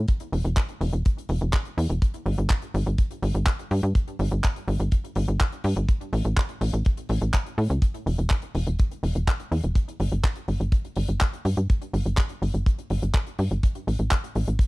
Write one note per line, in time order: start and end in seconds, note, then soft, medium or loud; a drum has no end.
0.08 kick loud
0.08 closed hi-hat medium
0.20 closed hi-hat medium
0.33 0.43 E1 medium
0.33 open hi-hat loud
0.45 0.55 E1 medium
0.45 closed hi-hat medium
0.56 kick loud
0.56 clap loud
0.56 closed hi-hat medium
0.69 closed hi-hat soft
0.81 0.91 E1 loud
0.81 open hi-hat loud
0.93 1.03 E1 medium
0.93 closed hi-hat medium
1.05 kick loud
1.05 closed hi-hat medium
1.18 closed hi-hat medium
1.29 1.39 E1 medium
1.29 open hi-hat medium
1.41 1.52 E1 medium
1.41 closed hi-hat medium
1.53 kick loud
1.53 clap loud
1.53 closed hi-hat medium
1.65 closed hi-hat medium
1.78 1.88 E2 medium
1.78 open hi-hat loud
1.90 2.00 E1 medium
1.90 closed hi-hat soft
2.02 kick loud
2.02 closed hi-hat medium
2.14 closed hi-hat medium
2.26 2.36 G1 medium
2.26 open hi-hat loud
2.38 2.48 G1 medium
2.38 closed hi-hat medium
2.49 kick loud
2.49 clap loud
2.49 closed hi-hat medium
2.62 closed hi-hat soft
2.74 2.85 G1 loud
2.74 open hi-hat loud
2.86 2.97 G1 medium
2.86 closed hi-hat medium
2.98 kick loud
2.98 closed hi-hat medium
3.11 closed hi-hat soft
3.23 3.33 G1 medium
3.23 open hi-hat loud
3.35 3.45 G1 medium
3.35 closed hi-hat medium
3.46 kick loud
3.46 clap loud
3.46 closed hi-hat medium
3.59 closed hi-hat medium
3.71 3.81 G2 medium
3.71 open hi-hat loud
3.83 3.93 G2 medium
3.83 closed hi-hat soft
3.95 kick loud
3.95 closed hi-hat medium
4.08 closed hi-hat soft
4.19 4.30 G1 medium
4.19 open hi-hat loud
4.31 4.42 G1 medium
4.31 closed hi-hat soft
4.43 kick loud
4.43 clap loud
4.43 closed hi-hat medium
4.56 closed hi-hat medium
4.68 4.78 G1 medium
4.68 open hi-hat loud
4.80 4.90 G1 medium
4.80 closed hi-hat medium
4.92 kick loud
4.92 closed hi-hat medium
5.05 closed hi-hat medium
5.15 5.26 G1 medium
5.15 open hi-hat loud
5.28 5.38 G1 medium
5.28 closed hi-hat medium
5.40 kick loud
5.40 clap loud
5.40 closed hi-hat medium
5.52 closed hi-hat medium
5.64 5.75 G2 medium
5.64 open hi-hat loud
5.76 5.87 G1 medium
5.76 closed hi-hat medium
5.89 kick loud
5.89 closed hi-hat medium
6.01 closed hi-hat medium
6.13 6.23 A1 medium
6.13 open hi-hat loud
6.25 6.35 A1 medium
6.25 closed hi-hat medium
6.37 kick loud
6.37 clap loud
6.37 closed hi-hat medium
6.49 closed hi-hat medium
6.61 6.72 A1 medium
6.61 open hi-hat loud
6.73 6.84 A1 medium
6.73 closed hi-hat medium
6.85 kick loud
6.85 closed hi-hat medium
6.97 closed hi-hat medium
7.09 7.20 A1 medium
7.09 open hi-hat loud
7.21 7.32 A1 medium
7.21 closed hi-hat medium
7.34 kick loud
7.34 clap loud
7.34 closed hi-hat medium
7.46 closed hi-hat soft
7.58 7.68 A2 medium
7.58 open hi-hat loud
7.70 7.80 C#2 medium
7.70 closed hi-hat medium
7.82 kick loud
7.82 closed hi-hat medium
7.95 closed hi-hat medium
8.06 8.17 E1 loud
8.06 open hi-hat loud
8.18 8.29 E1 medium
8.18 closed hi-hat medium
8.30 kick loud
8.30 clap loud
8.30 closed hi-hat medium
8.42 closed hi-hat medium
8.55 8.65 E1 loud
8.55 open hi-hat loud
8.67 8.77 E1 medium
8.67 closed hi-hat medium
8.79 kick loud
8.79 closed hi-hat medium
8.91 closed hi-hat soft
9.03 9.13 E1 medium
9.03 open hi-hat loud
9.15 9.26 E1 medium
9.15 closed hi-hat medium
9.27 kick loud
9.27 clap loud
9.27 closed hi-hat medium
9.40 closed hi-hat medium
9.52 9.62 E2 medium
9.52 open hi-hat loud
9.63 9.74 E1 medium
9.63 closed hi-hat medium
9.75 kick loud
9.75 closed hi-hat medium
9.89 closed hi-hat medium
10.00 10.10 G1 medium
10.00 open hi-hat loud
10.12 10.22 G1 medium
10.12 closed hi-hat medium
10.24 kick loud
10.24 clap loud
10.24 closed hi-hat medium
10.36 closed hi-hat medium
10.48 10.59 G1 medium
10.48 open hi-hat loud
10.60 10.71 G1 medium
10.60 closed hi-hat medium
10.72 kick loud
10.72 closed hi-hat medium
10.85 closed hi-hat medium
10.96 11.07 G1 medium
10.96 open hi-hat loud
11.08 11.19 G1 medium
11.08 closed hi-hat medium
11.21 kick loud
11.21 clap loud
11.21 closed hi-hat medium
11.34 closed hi-hat medium
11.45 11.55 G2 medium
11.45 open hi-hat loud
11.57 11.68 G2 medium
11.57 closed hi-hat medium
11.70 kick loud
11.70 closed hi-hat medium
11.82 closed hi-hat medium
11.93 12.04 G1 loud
11.93 open hi-hat loud
12.06 12.16 G1 medium
12.06 closed hi-hat medium
12.17 kick loud
12.17 clap loud
12.17 closed hi-hat medium
12.29 closed hi-hat medium
12.42 12.52 G1 loud
12.42 open hi-hat loud
12.54 12.64 G1 medium
12.54 closed hi-hat medium
12.66 kick loud
12.66 closed hi-hat medium
12.79 closed hi-hat medium
12.90 13.01 G1 medium
12.90 open hi-hat loud
13.02 13.13 G1 medium
13.02 closed hi-hat medium
13.14 kick loud
13.14 clap loud
13.14 closed hi-hat medium
13.27 closed hi-hat medium
13.39 13.49 G2 medium
13.39 open hi-hat loud
13.51 13.61 G1 medium
13.51 closed hi-hat medium
13.63 kick loud
13.63 closed hi-hat medium
13.75 closed hi-hat soft
13.87 13.98 A1 medium
13.87 open hi-hat loud
13.99 14.10 A1 medium
13.99 closed hi-hat soft
14.11 kick loud
14.11 clap loud
14.11 closed hi-hat medium
14.24 closed hi-hat medium
14.35 14.46 A1 medium
14.35 open hi-hat loud
14.47 14.58 A1 medium
14.47 closed hi-hat medium
14.59 kick loud
14.59 closed hi-hat medium